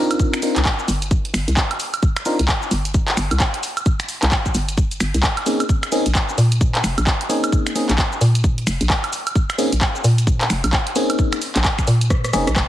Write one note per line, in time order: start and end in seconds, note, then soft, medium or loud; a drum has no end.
0.00 0.40 C4 medium
0.00 0.40 D4 medium
0.00 0.40 D#4 medium
0.00 0.40 F4 medium
0.00 0.40 A#4 loud
0.11 closed hi-hat medium
0.11 cabasa soft
0.11 high woodblock medium
0.20 kick loud
0.20 cabasa soft
0.34 finger snap medium
0.34 closed hi-hat medium
0.34 cabasa soft
0.42 0.60 C4 medium
0.42 0.60 D4 medium
0.42 0.60 D#4 medium
0.42 0.60 F4 medium
0.42 0.60 A#4 medium
0.42 open hi-hat loud
0.42 cabasa medium
0.56 0.64 C2 loud
0.56 clap medium
0.56 closed hi-hat medium
0.56 cabasa soft
0.65 kick loud
0.65 clap loud
0.65 cabasa soft
0.79 cabasa soft
0.88 1.32 G1 loud
0.88 open hi-hat medium
0.88 cabasa medium
1.02 closed hi-hat medium
1.02 cabasa soft
1.11 kick loud
1.11 cabasa soft
1.25 closed hi-hat soft
1.34 1.46 G1 loud
1.34 finger snap medium
1.34 open hi-hat loud
1.34 cabasa medium
1.48 1.56 C2 medium
1.48 closed hi-hat medium
1.48 cabasa soft
1.57 kick loud
1.57 clap loud
1.57 cabasa soft
1.71 closed hi-hat medium
1.71 high woodblock medium
1.80 open hi-hat loud
1.80 cabasa medium
1.94 closed hi-hat medium
1.94 cabasa soft
1.94 high woodblock medium
2.03 kick loud
2.03 cabasa soft
2.16 finger snap medium
2.16 closed hi-hat medium
2.16 cabasa soft
2.16 high woodblock medium
2.25 2.38 C4 loud
2.25 2.38 D4 medium
2.25 2.38 D#4 medium
2.25 2.38 F4 medium
2.25 2.38 A#4 loud
2.25 open hi-hat loud
2.25 cabasa medium
2.39 2.47 C2 loud
2.39 closed hi-hat medium
2.39 cabasa soft
2.48 kick loud
2.48 clap loud
2.48 cabasa soft
2.62 cabasa soft
2.71 3.15 G1 loud
2.71 open hi-hat medium
2.71 cabasa medium
2.85 closed hi-hat medium
2.85 cabasa soft
2.94 kick loud
2.94 cabasa soft
3.08 clap medium
3.08 closed hi-hat soft
3.17 3.29 G1 loud
3.17 finger snap medium
3.17 open hi-hat loud
3.17 cabasa medium
3.31 3.39 C2 medium
3.31 closed hi-hat medium
3.31 cabasa soft
3.31 high woodblock medium
3.40 kick loud
3.40 clap loud
3.40 cabasa soft
3.54 closed hi-hat soft
3.63 open hi-hat medium
3.63 cabasa medium
3.77 closed hi-hat medium
3.77 cabasa soft
3.77 high woodblock medium
3.86 kick loud
3.86 cabasa soft
4.00 finger snap medium
4.00 closed hi-hat medium
4.00 cabasa soft
4.09 open hi-hat loud
4.09 cabasa medium
4.23 4.31 C2 loud
4.23 clap medium
4.23 closed hi-hat medium
4.23 cabasa soft
4.32 kick loud
4.32 clap loud
4.32 cabasa soft
4.46 kick medium
4.46 cabasa soft
4.55 4.99 G1 loud
4.55 open hi-hat medium
4.55 cabasa medium
4.69 closed hi-hat medium
4.69 cabasa soft
4.77 kick loud
4.77 cabasa soft
4.91 closed hi-hat soft
4.91 cabasa soft
5.00 5.13 G1 medium
5.00 finger snap medium
5.00 open hi-hat loud
5.00 cabasa medium
5.14 5.22 C2 medium
5.14 closed hi-hat medium
5.14 cabasa soft
5.23 kick loud
5.23 clap loud
5.23 cabasa soft
5.37 closed hi-hat soft
5.37 high woodblock medium
5.46 5.64 A#3 medium
5.46 5.64 C4 medium
5.46 5.64 C#4 medium
5.46 5.64 D#4 medium
5.46 5.64 G#4 medium
5.46 open hi-hat medium
5.46 cabasa medium
5.60 closed hi-hat medium
5.60 cabasa soft
5.60 high woodblock medium
5.69 kick loud
5.69 cabasa soft
5.83 finger snap medium
5.83 closed hi-hat medium
5.83 cabasa soft
5.83 high woodblock medium
5.92 6.04 A#3 loud
5.92 6.04 C4 medium
5.92 6.04 C#4 medium
5.92 6.04 D#4 medium
5.92 6.04 G#4 loud
5.92 open hi-hat loud
5.92 cabasa medium
6.06 6.14 A#1 loud
6.06 closed hi-hat medium
6.06 cabasa soft
6.15 kick loud
6.15 clap loud
6.15 cabasa soft
6.29 cabasa soft
6.38 6.82 A#2 loud
6.38 open hi-hat medium
6.38 cabasa medium
6.52 closed hi-hat medium
6.52 cabasa soft
6.61 kick loud
6.61 cabasa soft
6.75 clap medium
6.75 closed hi-hat soft
6.84 6.96 F1 loud
6.84 finger snap medium
6.84 open hi-hat loud
6.84 cabasa medium
6.98 7.05 A#1 loud
6.98 closed hi-hat medium
6.98 cabasa soft
6.98 high woodblock medium
7.07 kick loud
7.07 clap loud
7.07 cabasa soft
7.21 closed hi-hat medium
7.29 7.73 A#3 medium
7.29 7.73 C4 medium
7.29 7.73 C#4 medium
7.29 7.73 D#4 medium
7.29 7.73 G#4 loud
7.29 open hi-hat medium
7.29 cabasa medium
7.44 closed hi-hat medium
7.44 cabasa soft
7.44 high woodblock medium
7.52 kick loud
7.52 cabasa soft
7.67 finger snap medium
7.67 closed hi-hat medium
7.67 cabasa soft
7.75 7.93 A#3 medium
7.75 7.93 C4 medium
7.75 7.93 C#4 medium
7.75 7.93 D#4 medium
7.75 7.93 G#4 medium
7.75 open hi-hat loud
7.75 cabasa medium
7.89 7.97 A#1 loud
7.89 clap medium
7.89 closed hi-hat medium
7.89 cabasa soft
7.98 kick loud
7.98 clap loud
7.98 cabasa soft
8.12 cabasa soft
8.21 8.65 A#2 loud
8.21 open hi-hat medium
8.21 cabasa medium
8.35 closed hi-hat medium
8.35 cabasa soft
8.44 kick loud
8.44 cabasa soft
8.58 closed hi-hat soft
8.67 8.79 F1 loud
8.67 finger snap soft
8.67 open hi-hat loud
8.67 cabasa medium
8.81 8.89 A#1 medium
8.81 closed hi-hat medium
8.81 cabasa soft
8.90 kick loud
8.90 clap loud
8.90 cabasa soft
9.04 closed hi-hat medium
9.04 high woodblock medium
9.13 open hi-hat medium
9.13 cabasa medium
9.27 closed hi-hat medium
9.27 cabasa soft
9.27 high woodblock medium
9.35 kick loud
9.35 cabasa soft
9.50 finger snap medium
9.50 closed hi-hat medium
9.50 cabasa soft
9.50 high woodblock medium
9.58 9.71 A#3 loud
9.58 9.71 C4 medium
9.58 9.71 C#4 medium
9.58 9.71 D#4 medium
9.58 9.71 G#4 loud
9.58 open hi-hat loud
9.58 cabasa medium
9.72 9.80 A#1 loud
9.72 closed hi-hat medium
9.72 cabasa soft
9.81 kick loud
9.81 clap loud
9.81 cabasa soft
9.95 cabasa soft
10.04 10.48 A#2 loud
10.04 open hi-hat loud
10.04 cabasa medium
10.18 closed hi-hat medium
10.18 cabasa soft
10.27 kick loud
10.27 cabasa soft
10.41 clap medium
10.41 closed hi-hat soft
10.50 10.62 F1 loud
10.50 finger snap medium
10.50 open hi-hat loud
10.50 cabasa medium
10.64 10.72 A#1 loud
10.64 closed hi-hat medium
10.64 cabasa soft
10.64 high woodblock medium
10.73 kick loud
10.73 clap loud
10.73 cabasa soft
10.87 closed hi-hat medium
10.96 11.39 A#3 loud
10.96 11.39 C4 medium
10.96 11.39 C#4 medium
10.96 11.39 D#4 medium
10.96 11.39 G#4 loud
10.96 open hi-hat medium
10.96 cabasa medium
11.10 closed hi-hat medium
11.10 cabasa soft
11.10 high woodblock medium
11.19 kick loud
11.19 cabasa soft
11.33 finger snap medium
11.33 closed hi-hat medium
11.33 cabasa soft
11.33 high woodblock medium
11.42 open hi-hat loud
11.42 cabasa medium
11.56 11.63 A#1 loud
11.56 clap medium
11.56 closed hi-hat medium
11.56 cabasa soft
11.64 kick loud
11.64 clap loud
11.64 cabasa soft
11.79 finger snap soft
11.79 kick medium
11.79 closed hi-hat soft
11.79 cabasa soft
11.87 12.31 A#2 loud
11.87 open hi-hat loud
11.87 cabasa medium
12.01 closed hi-hat medium
12.01 cabasa soft
12.10 kick loud
12.10 cross-stick medium
12.10 cabasa soft
12.24 cross-stick medium
12.24 closed hi-hat soft
12.24 cabasa soft
12.33 12.45 F1 loud
12.33 12.51 A#3 loud
12.33 12.51 C4 medium
12.33 12.51 C#4 medium
12.33 12.51 D#4 medium
12.33 12.51 G#4 loud
12.33 cross-stick medium
12.33 open hi-hat loud
12.33 cabasa medium
12.47 12.55 A#1 medium
12.47 cross-stick medium
12.47 closed hi-hat medium
12.47 cabasa soft
12.56 12.68 F1 loud
12.56 kick loud
12.56 cross-stick medium
12.56 clap loud
12.56 cabasa soft